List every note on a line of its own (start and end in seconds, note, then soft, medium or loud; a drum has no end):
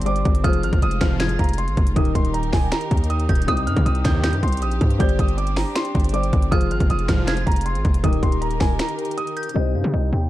0.00 0.24 G1 loud
0.00 0.05 G3 medium
0.00 0.43 G3 medium
0.00 1.92 C4 medium
0.00 0.43 D4 medium
0.00 0.06 G4 medium
0.00 0.06 C5 medium
0.00 0.06 D5 medium
0.00 closed hi-hat medium
0.05 0.44 G3 medium
0.05 0.44 G4 soft
0.05 0.44 C5 soft
0.05 0.44 D5 medium
0.05 0.42 D6 loud
0.05 closed hi-hat medium
0.16 closed hi-hat medium
0.25 0.44 G1 loud
0.25 kick loud
0.25 closed hi-hat soft
0.35 closed hi-hat medium
0.44 0.65 F1 loud
0.44 1.93 F3 medium
0.44 1.95 G#3 medium
0.44 1.95 F4 medium
0.44 1.93 F4 medium
0.44 1.94 G#4 medium
0.44 1.94 C5 medium
0.44 0.59 D#6 loud
0.44 1.16 F6 loud
0.44 kick loud
0.44 closed hi-hat loud
0.53 closed hi-hat medium
0.63 0.72 G#1 loud
0.63 0.78 F6 medium
0.63 closed hi-hat medium
0.73 0.82 F1 loud
0.73 kick loud
0.73 closed hi-hat medium
0.82 1.00 F1 loud
0.82 0.97 D#6 loud
0.82 closed hi-hat medium
0.91 closed hi-hat medium
1.01 1.38 F1 loud
1.01 1.28 C2 loud
1.01 1.28 G#2 loud
1.01 1.28 F3 loud
1.01 1.37 F6 medium
1.01 finger snap medium
1.01 kick loud
1.01 snare loud
1.01 closed hi-hat medium
1.20 1.56 G#6 medium
1.20 finger snap medium
1.20 snare loud
1.20 closed hi-hat medium
1.29 closed hi-hat medium
1.39 1.69 F1 loud
1.39 1.54 A#5 medium
1.39 kick medium
1.39 closed hi-hat soft
1.44 closed hi-hat medium
1.49 closed hi-hat medium
1.53 closed hi-hat medium
1.58 1.94 C6 medium
1.58 closed hi-hat medium
1.68 1.77 G#1 loud
1.68 closed hi-hat medium
1.77 1.95 F1 loud
1.77 kick loud
1.77 closed hi-hat soft
1.87 closed hi-hat medium
1.96 2.14 D#1 loud
1.96 3.45 D#3 medium
1.96 3.47 D#3 medium
1.96 4.97 D#4 medium
1.96 3.45 D#4 medium
1.96 3.47 G4 medium
1.96 3.46 G4 medium
1.96 3.47 A#4 loud
1.96 3.46 A#4 medium
1.96 2.11 D#6 medium
1.96 kick loud
1.96 closed hi-hat medium
2.05 closed hi-hat medium
2.15 2.52 D#1 loud
2.15 2.30 C6 medium
2.15 kick medium
2.15 closed hi-hat medium
2.25 closed hi-hat medium
2.34 2.49 A#5 medium
2.34 closed hi-hat medium
2.43 closed hi-hat medium
2.53 2.71 D#1 loud
2.53 2.68 G#5 medium
2.53 finger snap medium
2.53 kick loud
2.53 snare medium
2.53 open hi-hat medium
2.72 3.08 A#5 medium
2.72 finger snap loud
2.72 snare loud
2.72 closed hi-hat medium
2.81 closed hi-hat medium
2.91 3.28 D#2 loud
2.91 kick medium
2.91 closed hi-hat medium
2.97 closed hi-hat medium
3.04 closed hi-hat medium
3.10 3.46 D#6 medium
3.10 closed hi-hat medium
3.20 closed hi-hat medium
3.29 3.47 D#1 loud
3.29 3.47 G6 medium
3.29 kick loud
3.29 closed hi-hat medium
3.35 closed hi-hat medium
3.42 closed hi-hat medium
3.46 3.69 C2 loud
3.46 4.96 C3 medium
3.46 4.98 C3 medium
3.46 4.97 C4 medium
3.46 8.00 C4 medium
3.46 4.97 D#4 medium
3.46 6.49 G4 medium
3.46 4.97 G4 medium
3.46 3.63 D#6 loud
3.46 4.20 D#6 loud
3.46 kick loud
3.46 closed hi-hat medium
3.57 closed hi-hat medium
3.67 3.76 G2 loud
3.67 3.82 F6 medium
3.67 closed hi-hat medium
3.77 3.86 C3 loud
3.77 kick loud
3.77 closed hi-hat medium
3.86 4.04 C2 loud
3.86 4.01 D#6 medium
3.86 closed hi-hat medium
3.95 closed hi-hat medium
4.05 4.32 C2 medium
4.05 4.35 D#2 loud
4.05 4.32 G2 loud
4.05 4.32 D#3 loud
4.05 4.41 G6 medium
4.05 finger snap medium
4.05 kick loud
4.05 snare medium
4.05 closed hi-hat medium
4.24 4.60 G6 medium
4.24 finger snap loud
4.24 snare loud
4.24 closed hi-hat medium
4.33 4.43 G2 loud
4.33 closed hi-hat medium
4.43 4.63 C2 loud
4.43 4.58 C6 medium
4.43 kick medium
4.43 closed hi-hat soft
4.48 closed hi-hat medium
4.52 closed hi-hat medium
4.57 closed hi-hat medium
4.62 4.80 A#1 loud
4.62 4.98 D#6 medium
4.62 closed hi-hat medium
4.71 closed hi-hat medium
4.81 4.99 G2 loud
4.81 kick loud
4.81 closed hi-hat soft
4.90 closed hi-hat medium
4.99 5.18 G1 loud
4.99 6.11 G3 medium
4.99 6.50 D4 medium
4.99 6.11 G4 medium
4.99 6.12 C5 medium
4.99 6.12 D5 medium
4.99 5.15 G6 medium
4.99 kick loud
4.99 closed hi-hat loud
5.09 closed hi-hat medium
5.19 5.65 G1 loud
5.19 5.34 D#6 medium
5.19 kick medium
5.19 closed hi-hat medium
5.28 closed hi-hat medium
5.38 5.53 D6 medium
5.38 closed hi-hat medium
5.47 closed hi-hat medium
5.57 5.72 A#5 medium
5.57 finger snap medium
5.57 snare loud
5.57 open hi-hat medium
5.75 6.11 C6 medium
5.75 finger snap loud
5.75 snare loud
5.75 closed hi-hat medium
5.85 closed hi-hat medium
5.95 6.31 G1 loud
5.95 kick medium
5.95 closed hi-hat soft
6.00 closed hi-hat medium
6.04 closed hi-hat medium
6.09 6.51 G3 medium
6.09 closed hi-hat medium
6.13 6.52 G4 soft
6.13 6.52 C5 soft
6.13 6.52 D5 medium
6.13 6.49 D6 medium
6.13 closed hi-hat medium
6.23 closed hi-hat medium
6.33 6.51 G1 loud
6.33 kick loud
6.33 closed hi-hat soft
6.42 closed hi-hat medium
6.51 6.72 F1 loud
6.51 8.00 F3 medium
6.51 8.02 G#3 medium
6.51 8.02 F4 medium
6.51 8.01 F4 medium
6.51 8.01 G#4 medium
6.51 8.02 C5 medium
6.51 6.66 D#6 medium
6.51 7.24 F6 loud
6.51 kick loud
6.51 closed hi-hat loud
6.61 closed hi-hat medium
6.71 6.80 G#1 loud
6.71 6.86 F6 medium
6.71 closed hi-hat medium
6.80 6.89 F1 loud
6.80 kick loud
6.80 closed hi-hat medium
6.90 7.08 F1 loud
6.90 7.05 D#6 loud
6.90 closed hi-hat medium
6.99 closed hi-hat medium
7.08 7.45 F1 loud
7.08 7.36 C2 loud
7.08 7.36 G#2 loud
7.08 7.36 F3 loud
7.08 7.44 F6 medium
7.08 finger snap medium
7.08 kick loud
7.08 snare medium
7.08 closed hi-hat medium
7.27 7.64 G#6 medium
7.27 finger snap medium
7.27 snare loud
7.27 closed hi-hat medium
7.37 closed hi-hat medium
7.46 7.77 F1 loud
7.46 7.61 A#5 medium
7.46 kick medium
7.46 closed hi-hat soft
7.52 closed hi-hat medium
7.56 closed hi-hat medium
7.61 closed hi-hat medium
7.66 8.01 C6 medium
7.66 closed hi-hat medium
7.75 7.84 G#1 loud
7.75 closed hi-hat medium
7.85 8.03 F1 loud
7.85 kick loud
7.85 closed hi-hat soft
7.94 closed hi-hat medium
8.03 8.22 D#1 loud
8.03 9.52 D#3 medium
8.03 9.54 D#3 medium
8.03 9.54 D#4 medium
8.03 9.53 D#4 medium
8.03 9.54 G4 medium
8.03 9.53 G4 medium
8.03 9.54 A#4 medium
8.03 8.19 D#6 medium
8.03 kick loud
8.03 closed hi-hat loud
8.13 closed hi-hat medium
8.23 8.59 D#1 loud
8.23 8.38 C6 medium
8.23 kick medium
8.23 closed hi-hat medium
8.32 closed hi-hat medium
8.42 8.56 A#5 medium
8.42 closed hi-hat medium
8.51 closed hi-hat medium
8.60 8.79 D#1 loud
8.60 8.75 G#5 medium
8.60 finger snap medium
8.60 kick loud
8.60 snare medium
8.60 open hi-hat medium
8.79 9.15 A#5 medium
8.79 finger snap loud
8.79 snare loud
8.79 closed hi-hat medium
8.89 closed hi-hat medium
8.99 closed hi-hat medium
9.05 closed hi-hat medium
9.11 closed hi-hat medium
9.18 9.53 D#6 medium
9.18 closed hi-hat medium
9.27 closed hi-hat medium
9.37 9.55 G6 medium
9.37 closed hi-hat medium
9.43 closed hi-hat medium
9.49 closed hi-hat medium
9.54 9.76 C2 loud
9.54 10.29 C3 medium
9.54 10.29 G3 medium
9.54 10.29 C4 medium
9.54 10.29 D#4 medium
9.54 10.29 G4 medium
9.54 10.29 C5 medium
9.54 9.70 D#5 loud
9.74 9.84 G2 medium
9.74 9.89 F5 medium
9.84 9.93 C3 loud
9.93 10.12 C2 loud
9.93 10.08 D#5 medium
10.13 10.29 D#2 loud
10.13 10.29 G5 medium